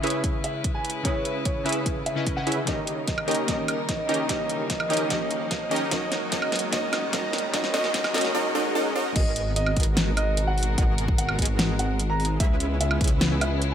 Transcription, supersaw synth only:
0.04 C#4 E4 G#4 B4 E5
1.05 C#4 E4 G#4 B4 E5
1.66 C#4 E4 G#4 B4 E5
2.47 C#4 E4 G#4 B4 E5
2.67 C#4 D#4 G4 A#4 D#5
3.28 C#4 D#4 G4 A#4 D#5
3.48 C#4 D#4 G4 A#4 D#5
4.09 C#4 D#4 G4 A#4 D#5
4.29 C#4 D#4 G4 A#4 D#5
4.90 C#4 D#4 G4 A#4 D#5
5.10 C#4 D#4 G4 A#4 D#5
5.71 C#4 D#4 G4 A#4 D#5
5.91 C#4 D#4 F#4 A#4 D#5
6.32 C#4 D#4 F#4 A#4 D#5
6.72 C#4 D#4 F#4 A#4 D#5
7.13 C#4 D#4 F#4 A#4 D#5
7.54 C#4 D#4 F#4 A#4 D#5
7.74 C#4 D#4 F#4 A#4 D#5
7.94 C#4 D#4 F#4 A#4 D#5
8.14 C#4 D#4 F#4 A#4 D#5
8.35 C#4 D#4 F#4 A#4 D#5
8.55 C#4 D#4 F#4 A#4 D#5
8.75 C#4 D#4 F#4 A#4 D#5
8.95 C#4 D#4 F#4 A#4 D#5
9.16 B3 F#4 G#4 A#4 D#5
9.77 B3 F#4 G#4 A#4 D#5
10.78 B3 F#4 G#4 A#4 D#5
11.39 B3 F#4 G#4 A#4 D#5
12.40 C#4 E4 G#4 B4 E5
13.01 C#4 E4 G#4 B4 E5

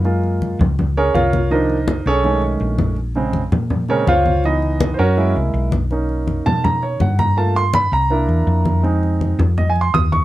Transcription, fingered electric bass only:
Already playing: F#2
0.59 C#2
1.14 C2
2.06 B1
2.60 A#1
3.52 A#2
4.07 C#2
4.99 F#2
5.36 C2
5.54 B1
6.46 B2
7.01 G2
7.92 C2
8.28 E2
8.47 F2
9.39 F2
9.94 D#2

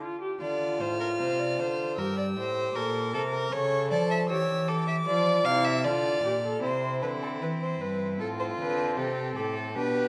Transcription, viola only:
0.02 F4
0.21 G4
0.41 F4
1.98 G4
2.75 A4
3.14 A#4
3.53 A4
4.30 G4
5.08 F4
5.46 E4
5.85 F4
6.24 G4
6.43 A4
6.63 C4
8.20 C4
9.76 D4

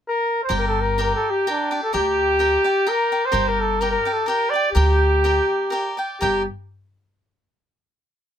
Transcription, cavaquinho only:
0.49 G4 A#4 D5 G5
0.98 G4 A#4 D5 G5
1.47 G4 A#4 D5 G5
1.71 G4 D5 G5
1.93 G4 A#4 D5 G5
2.39 G4 A#4 D5 G5
2.64 G4 D5 G5
2.86 G4 A#4 D5 G5
3.12 G4 D5 G5
3.32 G4 A#4 D5 G5
3.81 G4 A#4 D5 G5
4.05 G4 D5 G5
4.26 G4 A#4 D5 G5
4.54 G4 D5 G5
4.75 G4 A#4 D5 G5
5.24 G4 A#4 D5 G5
5.70 G4 A#4 D5 G5
5.97 G4 D5 G5
6.21 G4 A#4 D5 G5

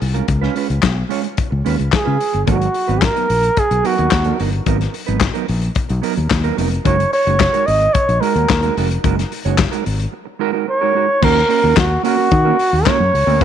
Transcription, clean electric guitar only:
0.00 muted clean electric guitar stroke
0.14 G#3 C#4 F4 A#4
0.41 G#3 C#4 F4 B4
0.55 G#3 C#4 F4 B4
0.69 muted clean electric guitar stroke
0.84 muted clean electric guitar stroke
0.96 muted clean electric guitar stroke
1.09 G#3 C#4 F4 C#5
1.23 muted clean electric guitar stroke
1.37 muted clean electric guitar stroke
1.51 muted clean electric guitar stroke
1.65 G#3 C#4 F4 B4
1.78 muted clean electric guitar stroke
2.05 G#3 C#4 F4 B4
2.33 muted clean electric guitar stroke
2.46 F#3 B3 D#4 A#4
2.60 muted clean electric guitar stroke
2.74 muted clean electric guitar stroke
2.88 F#3 B3 D#4 B4
3.15 F#3 B3 D#4 A#4
3.29 muted clean electric guitar stroke
3.43 muted clean electric guitar stroke
3.57 muted clean electric guitar stroke
3.70 muted clean electric guitar stroke
3.83 F#3 B3 D#4 A#4
3.97 F#3 B3 D#4 A#4
4.11 muted clean electric guitar stroke
4.25 F#3 B3 D#4 A#4
4.39 F#3 B3 D#4 A#4
4.52 muted clean electric guitar stroke
4.66 F#3 B3 D#4 A#4
4.80 muted clean electric guitar stroke
4.93 muted clean electric guitar stroke
5.07 F#3 B3 D#4 B4
5.34 F#3 B3 D#4 A#4
5.48 muted clean electric guitar stroke
5.62 muted clean electric guitar stroke
5.89 muted clean electric guitar stroke
6.02 F#3 B3 D#4 A#4
6.16 muted clean electric guitar stroke
6.30 muted clean electric guitar stroke
6.44 F#3 B3 D#4 A#4
6.57 F#3 B3 D#4 A#4
6.71 muted clean electric guitar stroke
6.85 G#3 D#4 F#4 A#4
6.98 muted clean electric guitar stroke
7.12 muted clean electric guitar stroke
7.26 G#3 D#4 F#4 C#5
7.53 G#3 D#4 F#4 A#4
7.80 muted clean electric guitar stroke
7.94 muted clean electric guitar stroke
8.08 muted clean electric guitar stroke
8.21 G#3 D#4 F#4 A#4
8.35 G#3 D#4 F#4 A#4
8.63 G#3 D#4 F#4 A#4
8.77 G#3 D#4 F#4 A#4
8.91 muted clean electric guitar stroke
9.04 G#3 D#4 F#4 A#4
9.18 muted clean electric guitar stroke
9.32 muted clean electric guitar stroke
9.45 G#3 D#4 F#4 C#5
9.72 G#3 D#4 F#4 A#4
9.99 muted clean electric guitar stroke
10.12 muted clean electric guitar stroke
10.25 muted clean electric guitar stroke
10.39 G#3 D#4 F#4 A#4
10.53 G#3 D#4 F#4 A#4
10.68 muted clean electric guitar stroke
10.81 G#3 D#4 F#4 A#4
10.95 G#3 D#4 F#4 A#4
11.22 A#3 C#4 F#4 A#4
11.48 A#3 C#4 F#4 A#4
11.62 A#3 C#4 F#4 A#4
11.78 muted clean electric guitar stroke
11.90 muted clean electric guitar stroke
12.03 A#3 C#4 F#4 A#4
12.17 A#3 C#4 F#4 A#4
12.31 muted clean electric guitar stroke
12.45 A#3 C#4 F#4 A#4
12.59 muted clean electric guitar stroke
12.72 muted clean electric guitar stroke
12.85 A#3 C#4 F#4 A#4
13.00 muted clean electric guitar stroke
13.13 muted clean electric guitar stroke
13.26 A#3 C#4 F#4 A#4
13.40 A#3 C#4 F#4

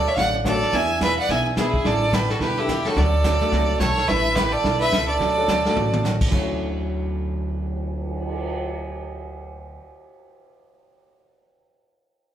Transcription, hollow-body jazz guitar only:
0.16 D3 F#3 A3 C#4 F#4
0.44 D3 F#3 A3 C#4 F#4
0.73 E3 B3 D4 G#4
1.00 E3 B3 D4 G#4
1.30 E3 B3 D4 G#4
1.57 E3 B3 D4 G#4
1.84 D3 G3 D4 E4 A4
2.12 D3 G3 D4 E4 A4
2.39 D3 G3 D4 E4 A4
2.67 D3 G3 D4 E4 A4
2.96 D3 F#3 A3 C#4 F#4
3.24 D3 F#3 A3 C#4 F#4
3.52 D3 F#3 A3 C#4 F#4
3.79 D3 F#3 A3 C#4 F#4
4.08 D3 G3 D4 E4 A4
4.36 D3 G3 D4 E4 A4
4.63 D3 G3 D4 E4 A4
4.92 D3 G3 D4 E4 A4
5.19 D3 F#3 A3 C#4 F#4
5.47 D3 F#3 A3 C#4 F#4
5.75 D3 F#3 A3 C#4 F#4
6.03 D3 F#3 A3 C#4 F#4
6.31 D3 F#3 A3 C#4 F#4

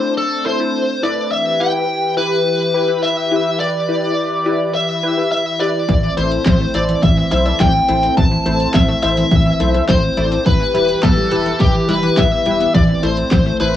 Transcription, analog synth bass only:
5.89 A1
6.17 A1
6.46 A1
6.74 A1
7.03 A1
7.31 B1
7.60 A1
7.89 A1
8.17 A1
8.46 A1
8.74 A1
9.03 A1
9.31 A1
9.60 B1
9.89 A1
10.17 A1
10.46 E1
10.74 E1
11.03 E1
11.32 E1
11.60 E1
11.89 F1
12.17 E1
12.46 E1
12.74 A1
13.03 A1
13.31 A1
13.60 A1

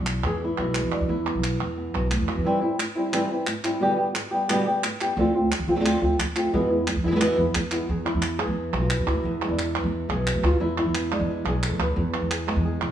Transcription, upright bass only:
0.00 B1
0.23 E2
0.58 B1
0.83 E2
1.00 E2
1.09 E2
1.35 B1
1.60 E2
1.94 B1
2.20 E2
2.37 E2
5.17 D2
5.59 D2
5.68 D2
6.02 D2
6.19 D2
6.54 E2
6.96 E2
7.04 E2
7.38 E2
7.55 E2
7.89 E2
8.14 E2
8.47 E2
8.73 B1
8.99 E2
9.07 D2
9.23 E2
9.49 E2
9.84 E2
10.09 B1
10.35 E2
10.43 D2
10.60 E2
10.86 E2
11.20 E2
11.45 B1
11.71 E2
11.79 D2
11.97 E2
12.22 E2
12.56 E2
12.82 B2

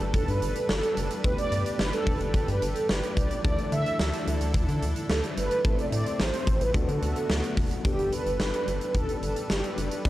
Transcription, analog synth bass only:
0.00 G1
0.14 G1
0.28 G2
0.42 G1
0.69 G1
0.97 F#1
1.24 G1
1.52 G2
1.79 G1
2.07 G1
2.21 G1
2.34 G1
2.48 G2
2.62 G1
2.89 G1
3.17 C2
3.45 D2
3.72 D3
4.00 D2
4.27 D2
4.41 D2
4.54 D2
4.68 D3
4.82 D2
5.10 D2
5.37 G1
5.65 A1
5.92 A2
6.20 A1
6.47 A1
6.61 A1
6.74 D2
6.88 D3
7.02 D2
7.30 D2
7.57 F#1
7.85 G1
7.99 G1
8.26 G1
8.40 G1
8.67 G1
8.95 G1
9.22 G1
9.50 G1
9.77 F#1
10.05 G1

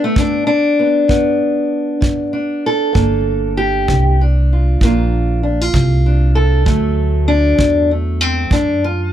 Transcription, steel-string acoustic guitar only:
Already playing: B3
0.04 A3
0.18 D3 D4
0.47 D4
0.79 B3
1.08 G2 B3
2.01 D3
2.33 D4
2.66 A4
2.93 G2 A#3 D4
3.57 G4
3.89 D3
4.21 D4
4.53 F4
4.83 G2 A#3 D4 F4
5.43 D4
5.61 F4
5.74 D3
6.06 D4
6.35 A4
6.66 D2 F#3 A3
7.28 D4
7.59 D3
7.91 A3
8.21 C4
8.52 D2 D4
8.84 F4

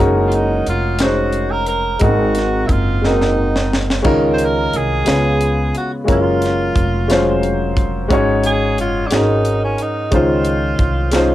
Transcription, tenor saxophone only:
0.27 F4
0.35 D#4
0.69 F4
1.03 F#4
1.51 A#4
1.68 A#4
2.02 F#4
2.67 E4
2.71 F4
3.06 D#4
4.34 C5
4.45 A#4
4.77 G#4
5.77 F#4
6.12 F4
8.46 G#4
8.81 F4
9.07 D4
9.14 D#4
9.64 C#4
9.82 D#4
10.15 F4

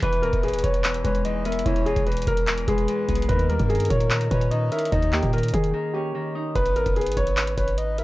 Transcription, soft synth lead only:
0.02 B4
1.04 C#5
1.25 D#5
1.45 E5
1.66 C#5
2.68 B4
3.29 A#4
4.31 C#5
4.51 D#5
4.72 E5
4.92 D#5
6.55 B4
7.57 C#5
7.78 D#5
7.98 E5

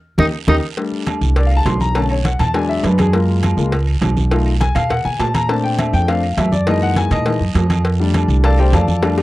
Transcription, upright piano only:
0.18 D#4 G4 A#4
0.49 D#4 G4 A#4
0.77 G3 A3 D4
1.37 D5
1.46 F5
1.57 A5
1.66 C6
1.81 A#5
1.95 D3 A3 C#4 A5
2.11 C#5
2.25 F#5
2.40 A5
2.54 F#3 G#3 D4 G#5
2.69 E5
2.84 B4
2.99 G#4
3.13 G#3 A#3 F4 A#4
3.57 G#3 A#3 F4
4.31 A3 D#4 F4
4.60 G#5
4.75 F5
4.90 F#5
5.05 G#5
5.20 A5
5.34 A#5
5.48 A3 C4 D4 A5
5.64 G5
5.79 E5
5.94 G5
6.08 A3 C4 D4 F5
6.38 E5
6.52 D5
6.67 E3 G#3 A#3 D#4 D#5
6.83 F#5
6.97 G#5
7.12 D#5
7.26 E3 G#3 A#3 D#4
8.00 G3 A3 D4
8.44 A4 D5 F5 A5
8.58 G3 A3 D4 G4 C5 D5 G5
8.74 A4 D5 F5 A5
9.02 G3 A3 D4

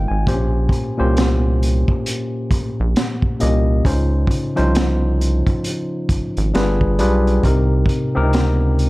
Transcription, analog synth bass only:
0.11 G#1
0.28 A#1
1.00 C2
2.52 A#1
2.80 A#1
3.43 C2
3.86 C#2
4.59 C2
6.10 G#1
6.38 G#1
6.56 G1
7.00 B1
7.45 C2
8.17 C#2

